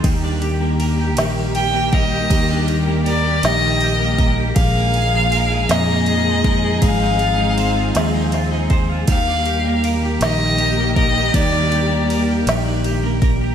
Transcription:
<<
  \new Staff \with { instrumentName = "Violin" } { \time 6/8 \key ees \major \tempo 4. = 53 r2 g''8 ees''8~ | ees''8 r8 d''8 ees''4 r8 | f''4. ees''4. | f''2 r4 |
f''4 r8 ees''4 ees''8 | d''4 r2 | }
  \new Staff \with { instrumentName = "Clean electric guitar" } { \time 6/8 \key ees \major ees16 d'16 g'16 bes16 bes'16 g'16 ees8 g'16 bes16 bes'16 g'16 | ees16 d'16 g'16 bes16 bes'16 g'16 ees8 g'16 bes16 bes'16 g'16 | bes,16 bes16 aes'16 f16 bes'16 aes'16 bes,16 bes16 aes'16 f16 bes'16 aes'16 | aes16 ees'16 f'16 ees'16 c''16 f'16 aes16 ees'16 f'16 ees'16 c''16 f'16 |
ees16 d'16 g'16 bes16 bes'16 g'16 ees8 g'16 bes16 bes'16 g'16 | ees16 d'16 g'16 bes16 bes'16 g'16 ees16 d'16 g'16 bes16 bes'16 g'16 | }
  \new Staff \with { instrumentName = "String section" } { \time 6/8 \key ees \major << { <ees g g'>2.~ | <ees g g'>2. | <f aes ees' aes'>2.~ | <f aes ees' aes'>2. |
<ees g g'>2.~ | <ees g g'>2. | } \\ { bes2.~ | bes2.~ | bes2. | c'2. |
bes2.~ | bes2. | } >> }
  \new Staff \with { instrumentName = "Fingered electric bass" } { \clef bass \time 6/8 \key ees \major ees,4. bes,,4. | ees,4. bes,,4. | bes,,4. f,4. | aes,,4. ees,4. |
ees,4. bes,,4. | ees,4. bes,,4. | }
  \new DrumStaff \with { instrumentName = "Drums" } \drummode { \time 6/8 <bd cymr>8 cymr8 cymr8 <cymr sn>8 cymr8 <bd cymr>8 | <bd cymr>8 cymr8 cymr8 <cymr sn>8 cymr8 <bd cymr>8 | <bd cymr>8 cymr8 cymr8 <cymr sn>8 cymr8 <bd cymr>8 | <bd cymr>8 cymr8 cymr8 <cymr sn>8 <cymr sn>8 <bd cymr>8 |
<bd cymr>8 cymr8 cymr8 <cymr sn>8 cymr8 <bd cymr>8 | <bd cymr>8 cymr8 cymr8 <cymr sn>8 cymr8 <bd cymr>8 | }
>>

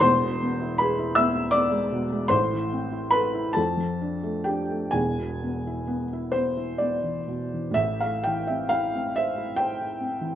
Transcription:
<<
  \new Staff \with { instrumentName = "Felt piano" } { \time 6/8 \key a \minor \tempo 4. = 46 << { c'''4 b''8 e'''8 d'''4 | c'''4 b''8 a''4 g''8 | gis''4. c''8 d''4 | e''16 f''16 g''16 e''16 f''8 e''8 g''4 | } \\ { c''4 b'8 e''8 d''4 | c''4 b'8 a'4 g'8 | gis'2~ gis'8 r8 | r2. | } >> }
  \new Staff \with { instrumentName = "Felt piano" } { \time 6/8 \key a \minor <e,, e,>16 b,16 b16 e'16 gis'16 e'16 b16 e'16 b16 gis16 b,16 gis16 | <a,, a,>16 e16 c'16 e'16 a'16 e'16 f,16 f16 d'16 a16 d'16 a16 | <e,, e,>16 b,16 b16 e'16 b16 e'16 b16 e'16 b16 e16 b,16 e16 | <a,, a,>16 a16 e16 c'16 e'16 c'16 c''16 e'16 c''16 e'16 c'16 e16 | }
>>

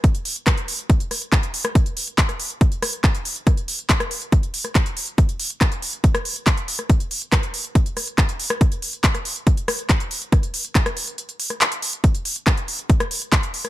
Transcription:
\new DrumStaff \with { instrumentName = "Drums" } \drummode { \time 4/4 \tempo 4 = 140 <hh bd>16 hh16 hho16 hh16 <hc hh bd ss>16 hh16 hho16 hh16 <hh bd>16 hh16 <hho ss>16 hh16 <hc hh bd>16 hh16 hho16 <hh ss>16 | <hh bd>16 hh16 hho16 hh16 <hc hh bd>16 <hh ss>16 hho16 hh16 <hh bd>16 hh16 <hho ss>16 hh16 <hc hh bd>16 hh16 hho16 hh16 | <hh bd ss>16 hh16 hho16 hh16 <hc hh bd>16 <hh ss>16 hho16 hh16 <hh bd>16 hh16 hho16 <hh ss>16 <hc hh bd>16 hh16 hho16 hh16 | <hh bd>16 hh16 hho16 hh16 <hc hh bd ss>16 hh16 hho16 hh16 <hh bd>16 <hh ss>16 hho16 hh16 <hc hh bd>16 hh16 hho16 <hh ss>16 |
<hh bd>16 hh16 hho16 hh16 <hc hh bd ss>16 hh16 hho16 hh16 <hh bd>16 hh16 <hho ss>16 hh16 <hc hh bd>16 hh16 hho16 <hh ss>16 | <hh bd>16 hh16 hho16 hh16 <hc hh bd>16 <hh ss>16 hho16 hh16 <hh bd>16 hh16 <hho ss>16 hh16 <hc hh bd>16 hh16 hho16 hh16 | <hh bd ss>16 hh16 hho16 hh16 <hc hh bd>16 <hh ss>16 hho16 hh16 hh16 hh16 hho16 <hh ss>16 <hc hh>16 hh16 hho16 hh16 | <hh bd>16 hh16 hho16 hh16 <hc hh bd ss>16 hh16 hho16 hh16 <hh bd>16 <hh ss>16 hho16 hh16 <hc hh bd>16 hh16 hho16 <hh ss>16 | }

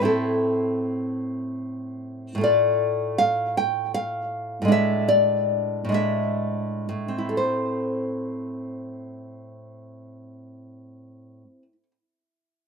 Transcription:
\new Staff \with { instrumentName = "Nylon-string guitar" } { \time 6/8 \key a \minor \tempo 4. = 45 << { a'4. r4. | d''4 f''8 g''8 f''4 | e''8 d''4 e''4. | <a, c' e' a' c''>2.~ |
<a, c' e' a' c''>2. | } \\ { <a, c' e'>2. | <a, a f'>2. | <a, gis d'>4. <a, gis d'>4. | r2. |
r2. | } >> }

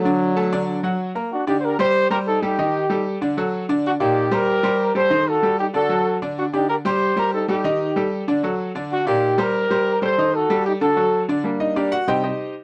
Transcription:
<<
  \new Staff \with { instrumentName = "Trombone section" } { \time 4/4 \key d \phrygian \tempo 4 = 190 << { fis2. r4 | \key g \minor fis'8 g'16. c''32 bes'8 c''4 bes'8 a'8 g'8~ | g'4. r2 r8 | fis'8 g'4 bes'2 c''8~ |
c''8 a'4 g'8 a'4. r8 | fis'8 g'8 bes'8 c''4 bes'8 a'8 g'8~ | g'4. r2 r8 | fis'8 g'4 bes'2 c''8~ |
c''8 a'4 g'8 a'4. r8 | r1 | } \\ { d2. r4 | d'8 ees'8 g'8 g'4 g'8 ees'8 ees'8~ | ees'4. r2 r8 | d'8 ees'4 g'2 a'8~ |
a'8 fis'4 ees'8 fis'4. r8 | d'8 ees'8 g'8 g'4 g'8 ees'8 ees'8~ | ees'4. r2 r8 | d'8 ees'4 g'2 a'8~ |
a'8 fis'4 ees'8 fis'4. r8 | r1 | } >> }
  \new Staff \with { instrumentName = "Grand piano" } { \time 4/4 \key d \phrygian <d d' d''>4 <a a' a''>8 <d d' d''>4 <fis fis' fis''>4 <bes bes' bes''>8 | \key g \minor r8 <d d' d''>4 <g g' c''>4 <g g' c''>4 <g g' a'>8 | <ees ees' ees''>4 <g g' a'>4 <d d' d''>8 <fis fis' a'>4 <d d' d''>8~ | <d d' d''>8 <bes, bes d''>4 <g g' c''>4 <g g' c''>4 <g g' a'>8 |
<ees ees' ees''>4 <g g' a'>4 <d d' d''>8 <fis fis' a'>4 <d d' d''>8~ | <d d' d''>8 <d d' d''>4 <g g' c''>4 <g g' c''>4 <g g' a'>8 | <ees ees' ees''>4 <g g' a'>4 <d d' d''>8 <fis fis' a'>4 <d d' d''>8~ | <d d' d''>8 <bes, bes d''>4 <g g' c''>4 <g g' c''>4 <g g' a'>8 |
<ees ees' ees''>4 <g g' a'>4 <d d' d''>8 <fis fis' a'>4 <d d' d''>8 | r8 <ees' ees''>8 <d' g' bes' d''>8 <fis' fis''>8 <g' c'' ees'' g''>8 <ees' g' c'' ees''>4 r8 | }
  \new Staff \with { instrumentName = "Grand piano" } { \clef bass \time 4/4 \key d \phrygian r1 | \key g \minor r1 | r1 | r1 |
r1 | r1 | r1 | r1 |
r1 | <g bes d'>4. r8 <c g ees'>8 r4. | }
>>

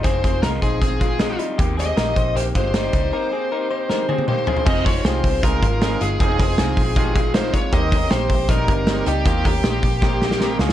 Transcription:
<<
  \new Staff \with { instrumentName = "Lead electric guitar" } { \time 4/4 \key f \minor \tempo 4 = 156 c''4 bes'8 aes'2 r8 | r8 ees''4. c''8 c''4.~ | c''2. c''4 | ees''8 des''8 c''4 bes'4. aes'8 |
aes'8 aes'2~ aes'8 c''8 des''8 | ees''4 c''4 bes'4. g'8 | g'8 g'2. r8 | }
  \new Staff \with { instrumentName = "Clean electric guitar" } { \time 4/4 \key f \minor <c' aes'>8 <c' aes'>8 <ees' bes'>8 <ees' c''>8 <c' aes'>8 <aes f'>8 <aes ees'>8 <g ees'>8 | <bes g'>8 <c' aes'>8 <ees' bes'>8 <ees' c''>8 <bes g'>8 <aes f'>8 <g ees'>8 <g ees'>8 | <ees' bes'>8 <c' aes'>8 <ees' bes'>8 <ees' c''>8 <ees' bes'>8 <c' aes'>8 <bes g'>8 <c' aes'>8 | <c' aes'>8 <ees' c''>8 <c' aes'>4 <aes f'>4. <aes f'>8 |
<c' aes'>8 <ees' c''>8 <c' aes'>4 <aes f'>4. <aes f'>8 | <bes g'>8 <des' bes'>8 <bes g'>4 <g ees'>4. <g ees'>8 | <bes g'>8 <des' bes'>8 <bes g'>4 <bes g'>4. <aes f'>8 | }
  \new Staff \with { instrumentName = "Transistor combo organ" } { \time 4/4 \key f \minor r1 | r1 | r1 | <c' ees' f' aes'>8 r8 <c' ees' f' g'>8 r8 <c' ees' f' aes'>8 r8 <c' ees' f' aes'>8 r8 |
<c' ees' f' aes'>8 r8 <c' ees' f' aes'>8 r8 <c' ees' f' g'>8 r8 <c' ees' f' bes'>8 r8 | <bes c' ees' g'>8 r8 <bes c' ees' g'>8 r8 <bes c' ees' bes'>8 r8 <bes c' ees' g'>8 r8 | <bes c' ees' f'>8 r8 <bes c' ees' g'>8 r8 <bes c' ees' g'>8 r8 <bes c' ees' bes'>8 <aes des' f' aes'>8 | }
  \new Staff \with { instrumentName = "Clean electric guitar" } { \time 4/4 \key f \minor <f, c ees aes c' f'>8 <ees aes c' f'>8 <ees aes c' f'>4. <ees aes c' f'>8 <ees aes c' f'>8 <ees aes c' f'>8 | <ees bes c' g'>8 <bes c' g'>8 <ees bes c' g'>4. <bes c' g'>8 <ees bes c' g'>8 <bes c' g'>8 | <ees bes c' g'>8 <bes c' g'>8 <ees bes c' g'>4. <bes c' g'>8 <ees bes c' g'>8 <ees aes c' f'>8 | <f, c ees aes c' f'>8 <ees aes c' f'>4 <ees aes c' f'>8 <f, c ees aes c' f'>8 <ees aes c' f'>8 <ees aes c' f'>8 <ees aes c' f'>8 |
<f, c ees aes c' f'>8 <ees aes c' f'>4 <ees aes c' f'>8 <f, c ees aes c' f'>8 <ees aes c' f'>8 <ees aes c' f'>8 <ees aes c' f'>8 | <ees bes c' g'>8 <bes c' g'>4 <bes c' g'>8 <ees bes c' g'>8 <bes c' g'>8 <ees bes c' g'>8 <bes c' g'>8 | <ees bes c' g'>8 <bes c' g'>4 <bes c' g'>8 <ees bes c' g'>8 <bes c' g'>8 <ees bes c' g'>8 <aes des' f'>8 | }
  \new Staff \with { instrumentName = "Picked electric bass" } { \clef bass \time 4/4 \key f \minor f,,8 f,,8 c,8 bes,,2 r8 | ees,4 bes,,8 bes,,8 bes,,8 g,,4 des,8 | r1 | f,,4 c,8 c,8 c,8 aes,,4 g,,8 |
f,,8 f,,8 c,8 bes,,2 r8 | ees,4 bes,,8 bes,,8 bes,,8 g,,4 des,8 | ees,8 ees,8 bes,,8 bes,,2 des,8 | }
  \new DrumStaff \with { instrumentName = "Drums" } \drummode { \time 4/4 <hh bd>8 <hh bd>8 <hh sn>8 <hh bd>8 <hh bd>8 <hh bd>8 <hh sn>8 hh8 | <hh bd>8 <hh sn>8 <hh sn>8 <hh bd>8 hh8 <hh bd>8 <hh sn>8 <hh bd>8 | r4 r4 sn8 tommh16 tommh16 toml8 tomfh16 tomfh16 | <cymc bd>8 <hho hhp bd>8 <hho hhp sn>8 <hho hhp bd>8 <hho hhp bd>8 <hho hhp bd>8 <hho hhp sn>8 <hho hhp>8 |
<hho hhp bd>8 <hho hhp bd sn>8 <hho hhp sn>8 <hho hhp bd>8 <hho hhp bd>8 <hho hhp bd>8 <hho hhp sn>8 <hho hhp bd>8 | <hho hhp bd>8 <hho hhp bd sn>8 <hho hhp sn>8 <hho hhp bd>8 <hho hhp bd>8 <hho hhp bd>8 <hho hhp sn>8 <hho hhp>8 | <hho hhp bd>8 <hho hhp bd sn>8 <hho hhp sn>8 <hho hhp bd>8 <bd sn>8 sn16 sn16 sn8 sn16 sn16 | }
>>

